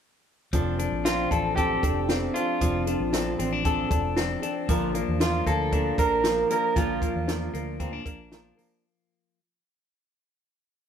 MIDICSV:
0, 0, Header, 1, 6, 480
1, 0, Start_track
1, 0, Key_signature, -1, "major"
1, 0, Tempo, 519931
1, 487, Time_signature, 4, 2, 24, 8
1, 10047, End_track
2, 0, Start_track
2, 0, Title_t, "Clean electric guitar"
2, 0, Program_c, 0, 27
2, 969, Note_on_c, 0, 65, 91
2, 1207, Note_off_c, 0, 65, 0
2, 1211, Note_on_c, 0, 69, 81
2, 1434, Note_off_c, 0, 69, 0
2, 1437, Note_on_c, 0, 67, 80
2, 2158, Note_off_c, 0, 67, 0
2, 2161, Note_on_c, 0, 65, 73
2, 4046, Note_off_c, 0, 65, 0
2, 4809, Note_on_c, 0, 65, 81
2, 5030, Note_off_c, 0, 65, 0
2, 5052, Note_on_c, 0, 69, 96
2, 5527, Note_off_c, 0, 69, 0
2, 5531, Note_on_c, 0, 70, 100
2, 6003, Note_off_c, 0, 70, 0
2, 6014, Note_on_c, 0, 70, 82
2, 6242, Note_on_c, 0, 65, 75
2, 6256, Note_off_c, 0, 70, 0
2, 7646, Note_off_c, 0, 65, 0
2, 10047, End_track
3, 0, Start_track
3, 0, Title_t, "Steel-string acoustic guitar"
3, 0, Program_c, 1, 25
3, 490, Note_on_c, 1, 53, 72
3, 495, Note_on_c, 1, 60, 90
3, 504, Note_on_c, 1, 62, 87
3, 507, Note_on_c, 1, 69, 91
3, 713, Note_off_c, 1, 69, 0
3, 724, Note_on_c, 1, 69, 50
3, 729, Note_off_c, 1, 53, 0
3, 729, Note_off_c, 1, 62, 0
3, 731, Note_off_c, 1, 60, 0
3, 740, Note_on_c, 1, 62, 47
3, 751, Note_on_c, 1, 60, 42
3, 966, Note_off_c, 1, 69, 0
3, 969, Note_off_c, 1, 60, 0
3, 971, Note_on_c, 1, 53, 48
3, 974, Note_off_c, 1, 62, 0
3, 981, Note_on_c, 1, 60, 62
3, 988, Note_on_c, 1, 62, 53
3, 997, Note_on_c, 1, 69, 54
3, 1197, Note_off_c, 1, 69, 0
3, 1209, Note_on_c, 1, 69, 50
3, 1210, Note_off_c, 1, 53, 0
3, 1211, Note_off_c, 1, 62, 0
3, 1214, Note_off_c, 1, 60, 0
3, 1223, Note_on_c, 1, 62, 44
3, 1236, Note_on_c, 1, 60, 34
3, 1448, Note_off_c, 1, 69, 0
3, 1450, Note_off_c, 1, 60, 0
3, 1454, Note_on_c, 1, 53, 75
3, 1455, Note_off_c, 1, 62, 0
3, 1461, Note_on_c, 1, 60, 77
3, 1466, Note_on_c, 1, 62, 67
3, 1474, Note_on_c, 1, 69, 76
3, 1680, Note_off_c, 1, 69, 0
3, 1691, Note_off_c, 1, 53, 0
3, 1691, Note_on_c, 1, 69, 50
3, 1695, Note_off_c, 1, 60, 0
3, 1697, Note_off_c, 1, 62, 0
3, 1707, Note_on_c, 1, 62, 38
3, 1718, Note_on_c, 1, 60, 41
3, 1922, Note_off_c, 1, 60, 0
3, 1926, Note_on_c, 1, 53, 57
3, 1930, Note_off_c, 1, 69, 0
3, 1933, Note_on_c, 1, 60, 55
3, 1934, Note_off_c, 1, 62, 0
3, 1945, Note_on_c, 1, 62, 57
3, 1949, Note_on_c, 1, 69, 62
3, 2154, Note_off_c, 1, 69, 0
3, 2165, Note_on_c, 1, 69, 43
3, 2167, Note_off_c, 1, 53, 0
3, 2169, Note_off_c, 1, 62, 0
3, 2170, Note_off_c, 1, 60, 0
3, 2180, Note_on_c, 1, 62, 40
3, 2193, Note_on_c, 1, 60, 38
3, 2407, Note_off_c, 1, 69, 0
3, 2408, Note_off_c, 1, 60, 0
3, 2413, Note_on_c, 1, 53, 74
3, 2414, Note_off_c, 1, 62, 0
3, 2419, Note_on_c, 1, 60, 77
3, 2426, Note_on_c, 1, 62, 74
3, 2431, Note_on_c, 1, 69, 87
3, 2638, Note_off_c, 1, 69, 0
3, 2649, Note_on_c, 1, 69, 45
3, 2651, Note_off_c, 1, 53, 0
3, 2651, Note_off_c, 1, 62, 0
3, 2653, Note_off_c, 1, 60, 0
3, 2662, Note_on_c, 1, 62, 42
3, 2674, Note_on_c, 1, 60, 39
3, 2883, Note_off_c, 1, 60, 0
3, 2885, Note_on_c, 1, 53, 64
3, 2888, Note_off_c, 1, 69, 0
3, 2892, Note_off_c, 1, 62, 0
3, 2894, Note_on_c, 1, 60, 64
3, 2903, Note_on_c, 1, 62, 62
3, 2910, Note_on_c, 1, 69, 65
3, 3111, Note_off_c, 1, 69, 0
3, 3122, Note_on_c, 1, 69, 52
3, 3126, Note_off_c, 1, 53, 0
3, 3126, Note_off_c, 1, 62, 0
3, 3131, Note_off_c, 1, 60, 0
3, 3137, Note_on_c, 1, 62, 53
3, 3148, Note_on_c, 1, 60, 48
3, 3358, Note_off_c, 1, 60, 0
3, 3362, Note_on_c, 1, 53, 70
3, 3363, Note_off_c, 1, 62, 0
3, 3365, Note_off_c, 1, 69, 0
3, 3369, Note_on_c, 1, 60, 79
3, 3375, Note_on_c, 1, 62, 87
3, 3379, Note_on_c, 1, 69, 94
3, 3593, Note_off_c, 1, 69, 0
3, 3604, Note_off_c, 1, 53, 0
3, 3604, Note_on_c, 1, 69, 59
3, 3608, Note_off_c, 1, 60, 0
3, 3611, Note_off_c, 1, 62, 0
3, 3620, Note_on_c, 1, 62, 51
3, 3629, Note_on_c, 1, 60, 44
3, 3838, Note_on_c, 1, 53, 57
3, 3840, Note_off_c, 1, 60, 0
3, 3845, Note_off_c, 1, 69, 0
3, 3848, Note_off_c, 1, 62, 0
3, 3851, Note_on_c, 1, 60, 65
3, 3860, Note_on_c, 1, 62, 61
3, 3866, Note_on_c, 1, 69, 68
3, 4068, Note_off_c, 1, 69, 0
3, 4079, Note_on_c, 1, 69, 64
3, 4082, Note_off_c, 1, 53, 0
3, 4084, Note_off_c, 1, 62, 0
3, 4089, Note_off_c, 1, 60, 0
3, 4095, Note_on_c, 1, 62, 49
3, 4109, Note_on_c, 1, 60, 44
3, 4323, Note_off_c, 1, 69, 0
3, 4329, Note_on_c, 1, 46, 80
3, 4331, Note_off_c, 1, 62, 0
3, 4333, Note_on_c, 1, 50, 96
3, 4335, Note_off_c, 1, 60, 0
3, 4335, Note_on_c, 1, 53, 89
3, 4339, Note_on_c, 1, 58, 85
3, 4343, Note_on_c, 1, 62, 95
3, 4346, Note_on_c, 1, 70, 84
3, 4556, Note_off_c, 1, 70, 0
3, 4565, Note_off_c, 1, 62, 0
3, 4567, Note_off_c, 1, 46, 0
3, 4567, Note_on_c, 1, 70, 57
3, 4569, Note_off_c, 1, 50, 0
3, 4571, Note_off_c, 1, 53, 0
3, 4572, Note_off_c, 1, 58, 0
3, 4576, Note_on_c, 1, 62, 49
3, 4585, Note_on_c, 1, 58, 50
3, 4592, Note_on_c, 1, 53, 44
3, 4793, Note_off_c, 1, 53, 0
3, 4804, Note_off_c, 1, 58, 0
3, 4804, Note_on_c, 1, 53, 56
3, 4806, Note_off_c, 1, 70, 0
3, 4811, Note_off_c, 1, 62, 0
3, 4815, Note_on_c, 1, 58, 60
3, 4822, Note_on_c, 1, 62, 52
3, 4830, Note_on_c, 1, 70, 59
3, 5032, Note_off_c, 1, 70, 0
3, 5043, Note_on_c, 1, 70, 51
3, 5044, Note_off_c, 1, 62, 0
3, 5045, Note_off_c, 1, 53, 0
3, 5050, Note_off_c, 1, 58, 0
3, 5055, Note_on_c, 1, 62, 46
3, 5064, Note_on_c, 1, 58, 38
3, 5073, Note_on_c, 1, 53, 39
3, 5284, Note_off_c, 1, 70, 0
3, 5285, Note_off_c, 1, 58, 0
3, 5285, Note_on_c, 1, 46, 73
3, 5286, Note_off_c, 1, 53, 0
3, 5290, Note_off_c, 1, 62, 0
3, 5290, Note_on_c, 1, 50, 63
3, 5296, Note_on_c, 1, 58, 72
3, 5297, Note_on_c, 1, 53, 76
3, 5300, Note_on_c, 1, 62, 77
3, 5305, Note_on_c, 1, 70, 78
3, 5516, Note_off_c, 1, 70, 0
3, 5524, Note_off_c, 1, 62, 0
3, 5525, Note_off_c, 1, 46, 0
3, 5527, Note_on_c, 1, 70, 49
3, 5528, Note_off_c, 1, 50, 0
3, 5530, Note_off_c, 1, 58, 0
3, 5531, Note_off_c, 1, 53, 0
3, 5535, Note_on_c, 1, 62, 45
3, 5552, Note_on_c, 1, 53, 38
3, 5761, Note_off_c, 1, 53, 0
3, 5766, Note_off_c, 1, 70, 0
3, 5770, Note_off_c, 1, 62, 0
3, 5772, Note_on_c, 1, 53, 54
3, 5782, Note_on_c, 1, 58, 53
3, 5787, Note_on_c, 1, 62, 60
3, 5795, Note_on_c, 1, 70, 53
3, 5993, Note_off_c, 1, 70, 0
3, 6004, Note_off_c, 1, 62, 0
3, 6004, Note_on_c, 1, 70, 56
3, 6008, Note_off_c, 1, 53, 0
3, 6013, Note_off_c, 1, 58, 0
3, 6015, Note_on_c, 1, 62, 46
3, 6025, Note_on_c, 1, 58, 43
3, 6031, Note_on_c, 1, 53, 38
3, 6243, Note_off_c, 1, 53, 0
3, 6244, Note_off_c, 1, 70, 0
3, 6246, Note_on_c, 1, 46, 67
3, 6248, Note_off_c, 1, 58, 0
3, 6250, Note_off_c, 1, 62, 0
3, 6252, Note_on_c, 1, 50, 81
3, 6254, Note_on_c, 1, 53, 78
3, 6259, Note_on_c, 1, 58, 83
3, 6261, Note_on_c, 1, 62, 80
3, 6263, Note_on_c, 1, 70, 80
3, 6469, Note_off_c, 1, 70, 0
3, 6478, Note_off_c, 1, 62, 0
3, 6480, Note_on_c, 1, 70, 47
3, 6485, Note_off_c, 1, 46, 0
3, 6488, Note_off_c, 1, 50, 0
3, 6488, Note_off_c, 1, 58, 0
3, 6489, Note_off_c, 1, 53, 0
3, 6489, Note_on_c, 1, 62, 50
3, 6499, Note_on_c, 1, 58, 40
3, 6505, Note_on_c, 1, 53, 38
3, 6704, Note_off_c, 1, 53, 0
3, 6715, Note_on_c, 1, 53, 48
3, 6716, Note_off_c, 1, 58, 0
3, 6722, Note_off_c, 1, 70, 0
3, 6726, Note_off_c, 1, 62, 0
3, 6727, Note_on_c, 1, 58, 55
3, 6737, Note_on_c, 1, 62, 57
3, 6743, Note_on_c, 1, 70, 63
3, 6943, Note_off_c, 1, 70, 0
3, 6954, Note_on_c, 1, 70, 48
3, 6955, Note_off_c, 1, 62, 0
3, 6959, Note_off_c, 1, 53, 0
3, 6963, Note_off_c, 1, 58, 0
3, 6966, Note_on_c, 1, 62, 45
3, 6974, Note_on_c, 1, 58, 48
3, 6979, Note_on_c, 1, 53, 43
3, 7194, Note_off_c, 1, 53, 0
3, 7197, Note_on_c, 1, 46, 81
3, 7199, Note_off_c, 1, 58, 0
3, 7199, Note_off_c, 1, 70, 0
3, 7200, Note_off_c, 1, 62, 0
3, 7202, Note_on_c, 1, 50, 75
3, 7205, Note_on_c, 1, 53, 91
3, 7210, Note_on_c, 1, 58, 82
3, 7211, Note_on_c, 1, 62, 78
3, 7217, Note_on_c, 1, 70, 77
3, 7424, Note_off_c, 1, 70, 0
3, 7433, Note_off_c, 1, 62, 0
3, 7435, Note_on_c, 1, 70, 56
3, 7440, Note_off_c, 1, 46, 0
3, 7443, Note_off_c, 1, 50, 0
3, 7443, Note_off_c, 1, 58, 0
3, 7444, Note_on_c, 1, 62, 53
3, 7445, Note_off_c, 1, 53, 0
3, 7454, Note_on_c, 1, 58, 52
3, 7458, Note_on_c, 1, 53, 47
3, 7663, Note_off_c, 1, 53, 0
3, 7674, Note_on_c, 1, 53, 61
3, 7675, Note_off_c, 1, 58, 0
3, 7679, Note_off_c, 1, 70, 0
3, 7681, Note_off_c, 1, 62, 0
3, 7687, Note_on_c, 1, 58, 63
3, 7692, Note_on_c, 1, 62, 65
3, 7702, Note_on_c, 1, 70, 78
3, 7903, Note_off_c, 1, 70, 0
3, 7913, Note_off_c, 1, 62, 0
3, 7914, Note_on_c, 1, 70, 55
3, 7919, Note_off_c, 1, 53, 0
3, 7921, Note_off_c, 1, 58, 0
3, 7924, Note_on_c, 1, 62, 56
3, 7932, Note_on_c, 1, 58, 54
3, 7939, Note_on_c, 1, 53, 44
3, 8159, Note_off_c, 1, 70, 0
3, 8164, Note_off_c, 1, 62, 0
3, 8168, Note_off_c, 1, 58, 0
3, 8172, Note_off_c, 1, 53, 0
3, 10047, End_track
4, 0, Start_track
4, 0, Title_t, "Clean electric guitar"
4, 0, Program_c, 2, 27
4, 3254, Note_on_c, 2, 62, 45
4, 3597, Note_off_c, 2, 62, 0
4, 5525, Note_on_c, 2, 58, 50
4, 6000, Note_off_c, 2, 58, 0
4, 7200, Note_on_c, 2, 60, 64
4, 7319, Note_off_c, 2, 60, 0
4, 7319, Note_on_c, 2, 62, 54
4, 8209, Note_off_c, 2, 62, 0
4, 10047, End_track
5, 0, Start_track
5, 0, Title_t, "Fingered electric bass"
5, 0, Program_c, 3, 33
5, 488, Note_on_c, 3, 29, 99
5, 794, Note_off_c, 3, 29, 0
5, 850, Note_on_c, 3, 34, 75
5, 1155, Note_off_c, 3, 34, 0
5, 1210, Note_on_c, 3, 33, 72
5, 1617, Note_off_c, 3, 33, 0
5, 1690, Note_on_c, 3, 29, 77
5, 2097, Note_off_c, 3, 29, 0
5, 2410, Note_on_c, 3, 29, 84
5, 2715, Note_off_c, 3, 29, 0
5, 2772, Note_on_c, 3, 34, 83
5, 3076, Note_off_c, 3, 34, 0
5, 3132, Note_on_c, 3, 33, 77
5, 3538, Note_off_c, 3, 33, 0
5, 3606, Note_on_c, 3, 29, 66
5, 4014, Note_off_c, 3, 29, 0
5, 4328, Note_on_c, 3, 34, 104
5, 4633, Note_off_c, 3, 34, 0
5, 4691, Note_on_c, 3, 40, 82
5, 4995, Note_off_c, 3, 40, 0
5, 5045, Note_on_c, 3, 38, 76
5, 5453, Note_off_c, 3, 38, 0
5, 5522, Note_on_c, 3, 34, 82
5, 5931, Note_off_c, 3, 34, 0
5, 6244, Note_on_c, 3, 34, 85
5, 6550, Note_off_c, 3, 34, 0
5, 6603, Note_on_c, 3, 40, 80
5, 6910, Note_off_c, 3, 40, 0
5, 6959, Note_on_c, 3, 38, 81
5, 7369, Note_off_c, 3, 38, 0
5, 7440, Note_on_c, 3, 34, 72
5, 7850, Note_off_c, 3, 34, 0
5, 10047, End_track
6, 0, Start_track
6, 0, Title_t, "Drums"
6, 489, Note_on_c, 9, 42, 82
6, 490, Note_on_c, 9, 36, 95
6, 581, Note_off_c, 9, 42, 0
6, 583, Note_off_c, 9, 36, 0
6, 732, Note_on_c, 9, 42, 58
6, 825, Note_off_c, 9, 42, 0
6, 970, Note_on_c, 9, 38, 90
6, 975, Note_on_c, 9, 42, 88
6, 1063, Note_off_c, 9, 38, 0
6, 1067, Note_off_c, 9, 42, 0
6, 1210, Note_on_c, 9, 36, 74
6, 1215, Note_on_c, 9, 42, 51
6, 1303, Note_off_c, 9, 36, 0
6, 1307, Note_off_c, 9, 42, 0
6, 1451, Note_on_c, 9, 36, 75
6, 1453, Note_on_c, 9, 42, 69
6, 1543, Note_off_c, 9, 36, 0
6, 1545, Note_off_c, 9, 42, 0
6, 1690, Note_on_c, 9, 36, 94
6, 1695, Note_on_c, 9, 42, 58
6, 1783, Note_off_c, 9, 36, 0
6, 1787, Note_off_c, 9, 42, 0
6, 1928, Note_on_c, 9, 38, 101
6, 1934, Note_on_c, 9, 42, 66
6, 2020, Note_off_c, 9, 38, 0
6, 2026, Note_off_c, 9, 42, 0
6, 2173, Note_on_c, 9, 42, 59
6, 2266, Note_off_c, 9, 42, 0
6, 2412, Note_on_c, 9, 36, 91
6, 2412, Note_on_c, 9, 42, 86
6, 2505, Note_off_c, 9, 36, 0
6, 2505, Note_off_c, 9, 42, 0
6, 2650, Note_on_c, 9, 42, 58
6, 2742, Note_off_c, 9, 42, 0
6, 2889, Note_on_c, 9, 38, 98
6, 2893, Note_on_c, 9, 42, 82
6, 2981, Note_off_c, 9, 38, 0
6, 2985, Note_off_c, 9, 42, 0
6, 3133, Note_on_c, 9, 42, 57
6, 3226, Note_off_c, 9, 42, 0
6, 3369, Note_on_c, 9, 42, 63
6, 3370, Note_on_c, 9, 36, 87
6, 3462, Note_off_c, 9, 36, 0
6, 3462, Note_off_c, 9, 42, 0
6, 3608, Note_on_c, 9, 36, 101
6, 3611, Note_on_c, 9, 42, 65
6, 3700, Note_off_c, 9, 36, 0
6, 3704, Note_off_c, 9, 42, 0
6, 3845, Note_on_c, 9, 38, 104
6, 3851, Note_on_c, 9, 42, 58
6, 3938, Note_off_c, 9, 38, 0
6, 3944, Note_off_c, 9, 42, 0
6, 4088, Note_on_c, 9, 42, 54
6, 4181, Note_off_c, 9, 42, 0
6, 4326, Note_on_c, 9, 42, 83
6, 4329, Note_on_c, 9, 36, 104
6, 4418, Note_off_c, 9, 42, 0
6, 4421, Note_off_c, 9, 36, 0
6, 4567, Note_on_c, 9, 42, 57
6, 4659, Note_off_c, 9, 42, 0
6, 4803, Note_on_c, 9, 38, 110
6, 4808, Note_on_c, 9, 42, 82
6, 4896, Note_off_c, 9, 38, 0
6, 4900, Note_off_c, 9, 42, 0
6, 5045, Note_on_c, 9, 36, 74
6, 5049, Note_on_c, 9, 42, 54
6, 5138, Note_off_c, 9, 36, 0
6, 5141, Note_off_c, 9, 42, 0
6, 5285, Note_on_c, 9, 36, 74
6, 5285, Note_on_c, 9, 42, 59
6, 5377, Note_off_c, 9, 42, 0
6, 5378, Note_off_c, 9, 36, 0
6, 5523, Note_on_c, 9, 36, 98
6, 5527, Note_on_c, 9, 42, 65
6, 5615, Note_off_c, 9, 36, 0
6, 5619, Note_off_c, 9, 42, 0
6, 5759, Note_on_c, 9, 38, 94
6, 5765, Note_on_c, 9, 42, 67
6, 5852, Note_off_c, 9, 38, 0
6, 5858, Note_off_c, 9, 42, 0
6, 6004, Note_on_c, 9, 42, 65
6, 6097, Note_off_c, 9, 42, 0
6, 6243, Note_on_c, 9, 36, 98
6, 6244, Note_on_c, 9, 42, 81
6, 6335, Note_off_c, 9, 36, 0
6, 6337, Note_off_c, 9, 42, 0
6, 6479, Note_on_c, 9, 36, 77
6, 6484, Note_on_c, 9, 42, 54
6, 6572, Note_off_c, 9, 36, 0
6, 6576, Note_off_c, 9, 42, 0
6, 6721, Note_on_c, 9, 38, 98
6, 6726, Note_on_c, 9, 42, 79
6, 6814, Note_off_c, 9, 38, 0
6, 6818, Note_off_c, 9, 42, 0
6, 6965, Note_on_c, 9, 42, 56
6, 7057, Note_off_c, 9, 42, 0
6, 7200, Note_on_c, 9, 42, 69
6, 7201, Note_on_c, 9, 36, 86
6, 7292, Note_off_c, 9, 42, 0
6, 7293, Note_off_c, 9, 36, 0
6, 7439, Note_on_c, 9, 36, 95
6, 7444, Note_on_c, 9, 42, 63
6, 7531, Note_off_c, 9, 36, 0
6, 7536, Note_off_c, 9, 42, 0
6, 7678, Note_on_c, 9, 38, 99
6, 7684, Note_on_c, 9, 42, 62
6, 7770, Note_off_c, 9, 38, 0
6, 7776, Note_off_c, 9, 42, 0
6, 7926, Note_on_c, 9, 46, 63
6, 8018, Note_off_c, 9, 46, 0
6, 10047, End_track
0, 0, End_of_file